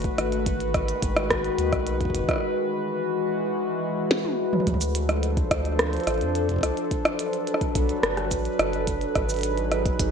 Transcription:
Already playing: D3 A3 F#4 B4
0.02 kick, closed hi-hat
0.04 closed hi-hat
0.18 G#1 D#3 G#3, cross-stick, closed hi-hat
0.32 closed hi-hat
0.46 kick, closed hi-hat
0.60 closed hi-hat
0.74 kick, cross-stick, closed hi-hat
0.88 closed hi-hat
1.02 G#1, kick, closed hi-hat
1.16 cross-stick, closed hi-hat
1.30 kick, cross-stick, closed hi-hat
1.44 closed hi-hat
1.58 D#2, closed hi-hat
1.73 B1, kick, cross-stick, closed hi-hat
1.87 closed hi-hat
2.01 kick, closed hi-hat
2.05 kick
2.10 kick
2.15 F#1, kick, closed hi-hat
2.19 kick
2.24 kick
2.29 kick, cross-stick, closed hi-hat
2.31 cross-stick
2.33 cross-stick
2.36 cross-stick
2.38 cross-stick
2.40 E3 G#3 F#4, cross-stick
4.11 snare
4.25 high tom
4.53 mid tom
4.60 mid tom
4.67 D2 F3 D4 A4 C5, kick, closed hi-hat, mid tom
4.74 kick, mid tom
4.81 closed hi-hat, shaker
4.95 closed hi-hat
5.09 cross-stick, closed hi-hat
5.23 closed hi-hat
5.37 kick, closed hi-hat
5.51 D2, kick, cross-stick, closed hi-hat
5.65 closed hi-hat
5.79 cross-stick, closed hi-hat
5.93 closed hi-hat
5.97 closed hi-hat
6.00 closed hi-hat
6.04 A1, cross-stick, closed hi-hat
6.07 closed hi-hat
6.14 closed hi-hat
6.18 F2, closed hi-hat
6.21 closed hi-hat
6.35 closed hi-hat
6.49 kick, closed hi-hat
6.51 kick
6.54 kick
6.56 kick
6.58 kick
6.61 C2, kick, cross-stick, closed hi-hat
6.77 closed hi-hat
6.91 F#3 B4, kick, closed hi-hat
7.05 cross-stick, closed hi-hat
7.19 closed hi-hat
7.33 closed hi-hat
7.47 closed hi-hat
7.54 cross-stick
7.61 kick, closed hi-hat
7.75 B1, kick, closed hi-hat
7.89 closed hi-hat
8.03 F#1, cross-stick, closed hi-hat
8.17 cross-stick, closed hi-hat
8.31 A1, kick, closed hi-hat, shaker
8.45 closed hi-hat
8.59 F#1, cross-stick, closed hi-hat
8.73 closed hi-hat
8.87 kick, closed hi-hat
9.01 closed hi-hat
9.15 G#1 F#3 D#4 G#4, kick, cross-stick, closed hi-hat
9.29 closed hi-hat, shaker
9.32 closed hi-hat
9.34 closed hi-hat
9.36 closed hi-hat
9.39 closed hi-hat
9.41 closed hi-hat
9.43 closed hi-hat
9.57 closed hi-hat
9.72 cross-stick, closed hi-hat
9.86 kick, closed hi-hat
9.99 G#1, kick, closed hi-hat

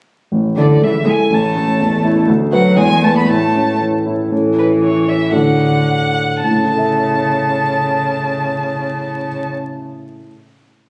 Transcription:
0.32 A1
0.56 D3 E4 A4 D5
0.82 C#2 E3 E5
1.05 G#3 E4 A4
1.09 G#5
1.30 A1 A3 A5
1.55 C#4
1.79 E2
2.03 E4
2.28 D2
2.52 F#3 F#4 B4 F#5
2.76 E2 G#3 G#5
3.02 A3 E4 B4 A5
3.16 B3 B5
3.28 A2 A3 A5
3.55 C#4
3.81 E3
4.06 E4
4.30 A2 E3 C#4 E4 A4
4.59 B4
4.83 C#5
5.09 E5
5.32 A2 D3 D4 F#4 A4 F#5
6.42 A2 C#3 A5
6.50 A3
6.57 C#4
6.64 E4
6.71 A4
6.78 E5

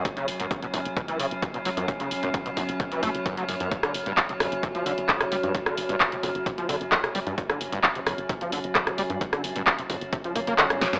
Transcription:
Already playing: F#3 C#4
0.05 kick, closed hi-hat
0.17 F#1 C#3, closed hi-hat
0.28 F#1, open hi-hat
0.40 F#1 F#2, closed hi-hat
0.51 F#2, kick, closed hi-hat
0.62 F#1 B2, closed hi-hat
0.74 F#1 E2, kick, open hi-hat
0.85 F#1, closed hi-hat
0.97 B2, kick, closed hi-hat
1.08 F#1 E3, closed hi-hat
1.19 F#1 C#3, open hi-hat
1.31 F#1, closed hi-hat
1.42 F#2, kick, closed hi-hat
1.54 B2, closed hi-hat
1.65 F#1 F#3, open hi-hat
1.77 F#2, closed hi-hat
1.88 F#2, kick, closed hi-hat
2.00 F#1 C#3, closed hi-hat
2.11 F#1, open hi-hat
2.23 F#1 F#2, closed hi-hat
2.34 F#2, kick, closed hi-hat
2.46 F#1 B2, closed hi-hat
2.57 F#1 E2, kick, open hi-hat
2.69 F#1, closed hi-hat
2.80 B2, kick, closed hi-hat
2.92 F#1 E3, closed hi-hat
3.03 F#2 A3, kick, open hi-hat
3.14 F#1, closed hi-hat
3.26 F#2, kick, closed hi-hat
3.37 F#3, closed hi-hat
3.48 F#1 F#2, open hi-hat
3.60 F#2, closed hi-hat
3.71 G2, kick, closed hi-hat
3.83 G1 D3, cross-stick, closed hi-hat
3.94 G1, open hi-hat
4.06 G1 G2, closed hi-hat
4.17 G2, kick, clap, closed hi-hat
4.29 G1 C3, closed hi-hat
4.40 G1 F2, kick, cross-stick, open hi-hat
4.52 G1, closed hi-hat
4.63 C3, kick, closed hi-hat
4.75 G1 F3, closed hi-hat
4.86 G1 D3, open hi-hat
4.98 G1, closed hi-hat
5.09 G2, kick, cross-stick, clap, closed hi-hat
5.21 C3, cross-stick, closed hi-hat
5.32 G1 G3, open hi-hat
5.43 G2, closed hi-hat
5.55 G2, kick, closed hi-hat
5.66 G1 D3, cross-stick, closed hi-hat
5.78 G1, open hi-hat
5.89 G1 G2, closed hi-hat
6.00 G2, kick, clap, closed hi-hat
6.12 G1 C3, closed hi-hat
6.23 G1 F2, kick, open hi-hat
6.35 G1, closed hi-hat
6.46 C3, kick, closed hi-hat
6.58 G1 F3, closed hi-hat
6.69 G1 D3, kick, open hi-hat
6.81 G1, closed hi-hat
6.92 G2, kick, cross-stick, clap, closed hi-hat
7.04 C3, cross-stick, closed hi-hat
7.15 G1 G3, open hi-hat
7.27 G2, closed hi-hat
7.38 G2, kick, closed hi-hat
7.50 G1 D3, cross-stick, closed hi-hat
7.61 G1, open hi-hat
7.72 G1 G2, closed hi-hat
7.84 G2, kick, clap, closed hi-hat
7.95 G1 C3, closed hi-hat
8.06 G1 F2, kick, cross-stick, open hi-hat
8.18 G1, closed hi-hat
8.29 C3, kick, closed hi-hat
8.41 G1 F3, closed hi-hat
8.52 G1 D3, open hi-hat
8.64 G1, closed hi-hat
8.75 G2, kick, cross-stick, clap, closed hi-hat
8.87 C3, cross-stick, closed hi-hat
8.98 G1 G3, open hi-hat
9.10 G2, closed hi-hat
9.21 G2, kick, closed hi-hat
9.33 G1 D3, cross-stick, closed hi-hat
9.44 G1, open hi-hat
9.56 G1 G2, closed hi-hat
9.67 G2, kick, clap, closed hi-hat
9.79 G1 C3, closed hi-hat
9.90 G1 F2, kick, open hi-hat
10.01 G1, closed hi-hat
10.13 C3, kick, closed hi-hat
10.24 G1 F3, closed hi-hat
10.35 G1 A#3, kick, open hi-hat
10.47 G1 A#3, closed hi-hat
10.58 D3, cross-stick, clap, closed hi-hat
10.70 G1, cross-stick, closed hi-hat
10.81 F1 A#3, snare, open hi-hat
10.93 G2, snare, closed hi-hat

